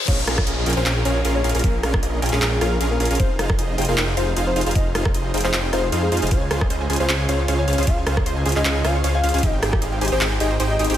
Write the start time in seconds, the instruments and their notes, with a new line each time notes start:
0.08 detuned saw bass A#1, supersaw synth C#4 F4 G#4 A#4 F5, soft synth lead C#5, kick, closed hi-hat, crash, downlifter
0.27 detuned saw bass A#1, supersaw synth C#4 F4 G#4 A#4 F5, cross-stick, closed hi-hat
0.38 kick, cross-stick
0.47 detuned saw bass A#1, supersaw synth C#4 F4 G#4 A#4 D#5, closed hi-hat
0.66 detuned saw bass A#1, supersaw synth C#4 F4 G#4 A#4 G5, closed hi-hat
0.70 closed hi-hat
0.73 detuned saw bass A#1, soft synth lead C5, closed hi-hat
0.77 supersaw synth C#4 F4 G#4 A#4 F5
0.86 detuned saw bass A#1, supersaw synth C#4 F4 G#4 A#4 G5, clap, closed hi-hat
1.05 detuned saw bass A#1, supersaw synth C#4 F4 G#4 A#4 F5, soft synth lead C#5, closed hi-hat
1.25 detuned saw bass A#1, supersaw synth C#4 F4 G#4 A#4 F5, closed hi-hat
1.35 soft synth lead C#5
1.44 detuned saw bass A#1, supersaw synth C#4 F4 G#4 A#4 F5, closed hi-hat
1.49 closed hi-hat
1.55 detuned saw bass A#1, supersaw synth C#4 F4 G#4 A#4 F5, closed hi-hat
1.59 closed hi-hat
1.64 detuned saw bass A#1, supersaw synth C#4 F4 G#4 A#4 F5, soft synth lead A#4, kick, closed hi-hat
1.83 detuned saw bass A#1, supersaw synth C#4 F4 G#4 A#4 F5, cross-stick, closed hi-hat
1.94 kick, cross-stick
2.03 detuned saw bass A#1, supersaw synth C#4 F4 G#4 A#4 D#5, closed hi-hat
2.22 detuned saw bass A#1, supersaw synth C#4 F4 G#4 A#4 G5, closed hi-hat
2.26 closed hi-hat
2.29 detuned saw bass A#1, supersaw synth C#4 F4 G#4 A#4 F5, soft synth lead G#4, closed hi-hat
2.33 clap
2.42 detuned saw bass A#1, supersaw synth C#4 F4 G#4 A#4 G5, clap, closed hi-hat
2.61 detuned saw bass A#1, supersaw synth C#4 F4 G#4 A#4 F5, soft synth lead A#4, cross-stick, closed hi-hat
2.81 detuned saw bass A#1, supersaw synth C#4 F4 G#4 A#4 F5, closed hi-hat
2.91 soft synth lead A#4
3.00 detuned saw bass A#1, supersaw synth C#4 F4 G#4 A#4 F5, closed hi-hat
3.05 closed hi-hat
3.10 detuned saw bass A#1, supersaw synth C#4 F4 G#4 A#4 F5, closed hi-hat
3.15 closed hi-hat
3.19 detuned saw bass F1, soft synth lead C5, kick, closed hi-hat
3.39 detuned saw bass F1, supersaw synth D#4 F4 G#4 C5 F5, cross-stick, closed hi-hat
3.50 kick, cross-stick
3.58 detuned saw bass F1, supersaw synth D#4 F4 G#4 C5 D#5, closed hi-hat
3.78 detuned saw bass F1, supersaw synth D#4 F4 G#4 C5 G5, closed hi-hat
3.82 closed hi-hat
3.85 detuned saw bass F1, supersaw synth D#4 F4 G#4 C5 F5, soft synth lead A#4, closed hi-hat
3.97 detuned saw bass F1, supersaw synth D#4 F4 G#4 C5 G5, clap, closed hi-hat
4.17 detuned saw bass F1, supersaw synth D#4 F4 G#4 C5 F5, soft synth lead C5, closed hi-hat
4.36 detuned saw bass F1, supersaw synth D#4 F4 G#4 C5 F5, closed hi-hat
4.47 soft synth lead C5
4.56 detuned saw bass F1, supersaw synth D#4 F4 G#4 C5 F5, closed hi-hat
4.61 closed hi-hat
4.66 detuned saw bass F1, supersaw synth D#4 F4 G#4 C5 F5, closed hi-hat
4.71 closed hi-hat
4.75 detuned saw bass F1, supersaw synth F4 F5, soft synth lead D#5, kick, closed hi-hat
4.95 detuned saw bass F1, supersaw synth D#4 F4 G#4 C5 F5, cross-stick, closed hi-hat
5.05 kick, cross-stick
5.14 detuned saw bass F1, supersaw synth D#4 F4 G#4 C5 D#5, closed hi-hat
5.34 detuned saw bass F1, supersaw synth D#4 F4 G#4 C5 G5, closed hi-hat
5.38 closed hi-hat
5.41 detuned saw bass F1, supersaw synth D#4 F4 F5, soft synth lead C5, clap, closed hi-hat
5.45 supersaw synth G#4 C5
5.53 detuned saw bass F1, supersaw synth D#4 F4 G#4 C5 G5, clap, closed hi-hat
5.73 detuned saw bass F1, supersaw synth D#4 F4 G#4 C5 F5, soft synth lead C5, cross-stick, closed hi-hat
5.92 detuned saw bass F2, supersaw synth D#4 F4 G#4 C5 F5, closed hi-hat
6.03 soft synth lead G#4
6.12 detuned saw bass F2, supersaw synth D#4 F4 G#4 C5 F5, closed hi-hat
6.17 closed hi-hat
6.22 detuned saw bass F1, supersaw synth D#4 F4 G#4 C5 F5, closed hi-hat
6.27 closed hi-hat
6.31 detuned saw bass C#2, supersaw synth C#4 F4 G#4 C5 F5, synth arpeggio sound F4, soft synth lead C#5, kick, closed hi-hat, ride
6.42 synth arpeggio sound G#5
6.51 detuned saw bass C#2, supersaw synth C#4 F4 G#4 C5 F5, synth arpeggio sound C5, cross-stick, closed hi-hat
6.61 synth arpeggio sound G#4, kick, cross-stick
6.70 detuned saw bass C#2, supersaw synth C#4 F4 G#4 C5 D#5, synth arpeggio sound C5, closed hi-hat
6.81 synth arpeggio sound G#5
6.90 detuned saw bass C#2, supersaw synth C#4 F4 G#4 C5 G#5, synth arpeggio sound G#4, closed hi-hat
6.93 closed hi-hat
6.96 detuned saw bass C#2, supersaw synth C#4 F4 G#4 C5 F5, synth arpeggio sound G#4, soft synth lead C5, closed hi-hat
7.09 detuned saw bass C#2, supersaw synth C#4 F4 G#4 C5 G#5, synth arpeggio sound F4, clap, closed hi-hat, ride
7.20 synth arpeggio sound G#5
7.29 detuned saw bass C#2, supersaw synth C#4 F4 G#4 C5 F5, synth arpeggio sound C5, soft synth lead C#5, closed hi-hat
7.39 synth arpeggio sound C#5
7.48 detuned saw bass C#2, supersaw synth C#4 F4 G#4 C5 F5, synth arpeggio sound C#5, closed hi-hat
7.59 soft synth lead C#5, synth arpeggio sound G#5
7.68 detuned saw bass C#2, supersaw synth C#4 F4 G#4 C5 F5, synth arpeggio sound F5, closed hi-hat
7.73 closed hi-hat
7.78 detuned saw bass C#2, supersaw synth C#4 F4 G#4 C5 F5, synth arpeggio sound G#4, closed hi-hat
7.83 closed hi-hat
7.87 detuned saw bass C#2, supersaw synth C#4 F4 G#4 C5 F5, synth arpeggio sound F4, soft synth lead F5, kick, closed hi-hat, ride
7.98 synth arpeggio sound G#5
8.06 detuned saw bass C#2, supersaw synth C#4 F4 G#4 C5 F5, synth arpeggio sound C5, cross-stick, closed hi-hat
8.17 synth arpeggio sound G#4, kick, cross-stick
8.26 detuned saw bass C#2, supersaw synth C#4 F4 G#4 C5 D#5, synth arpeggio sound C5, closed hi-hat
8.36 synth arpeggio sound G#5
8.45 detuned saw bass C#2, supersaw synth C#4 F4 G#4 C5 G#5, synth arpeggio sound G#4, closed hi-hat
8.49 closed hi-hat
8.52 synth arpeggio sound G#4, soft synth lead D#5, closed hi-hat
8.56 detuned saw bass C#2, supersaw synth C#4 F4 G#4 C5 F5, clap
8.65 detuned saw bass C#2, supersaw synth C#4 F4 G#4 C5 G#5, synth arpeggio sound F4, clap, closed hi-hat, ride
8.75 synth arpeggio sound G#5
8.84 detuned saw bass C#2, supersaw synth C#4 F4 G#4 C5 F5, synth arpeggio sound C5, soft synth lead F5, cross-stick, closed hi-hat
8.95 synth arpeggio sound C#5
9.04 detuned saw bass C#2, supersaw synth C#4 F4 G#4 C5 F5, synth arpeggio sound C#5, closed hi-hat
9.14 soft synth lead F5, synth arpeggio sound G#5
9.24 detuned saw bass C#2, supersaw synth C#4 F4 G#4 C5 F5, synth arpeggio sound F5, closed hi-hat
9.29 closed hi-hat
9.34 detuned saw bass C#2, supersaw synth C#4 F4 G#4 C5 F5, synth arpeggio sound G#4, closed hi-hat
9.39 closed hi-hat
9.43 detuned saw bass G#1, synth arpeggio sound D#4, supersaw synth D#4 G4 G#4 C5 G5, soft synth lead D#5, kick, closed hi-hat, ride
9.53 synth arpeggio sound G5
9.62 detuned saw bass G#1, supersaw synth D#4 G4 G#4 C5 G5, synth arpeggio sound G#4, cross-stick, closed hi-hat
9.73 synth arpeggio sound G4, kick, cross-stick
9.82 detuned saw bass G#1, supersaw synth D#4 G4 G#4 C5 F5, synth arpeggio sound G#4, closed hi-hat
9.92 synth arpeggio sound G5
10.01 detuned saw bass G#1, supersaw synth D#4 G4 G#4 C5 G#5, synth arpeggio sound G4, closed hi-hat
10.05 closed hi-hat
10.08 synth arpeggio sound G4, closed hi-hat
10.12 detuned saw bass G#1, supersaw synth D#4 G4 G#4 C5 G5, soft synth lead C5
10.21 detuned saw bass G#1, synth arpeggio sound D#4, supersaw synth D#4 G4 G#4 C5 G#5, clap, closed hi-hat, ride
10.31 synth arpeggio sound G5
10.40 detuned saw bass G#1, supersaw synth D#4 G4 G#4 C5 G5, synth arpeggio sound G#4, soft synth lead D#5, closed hi-hat
10.51 synth arpeggio sound C5
10.60 detuned saw bass G#1, supersaw synth D#4 G4 G#4 C5 G5, synth arpeggio sound C5, closed hi-hat
10.70 soft synth lead D#5, synth arpeggio sound G5
10.79 detuned saw bass G#1, supersaw synth D#4 G4 G#4 C5 G5, synth arpeggio sound D#5, closed hi-hat
10.85 closed hi-hat
10.90 detuned saw bass G#1, supersaw synth D#4 G4 G#4 C5 G5, synth arpeggio sound G4, closed hi-hat
10.94 closed hi-hat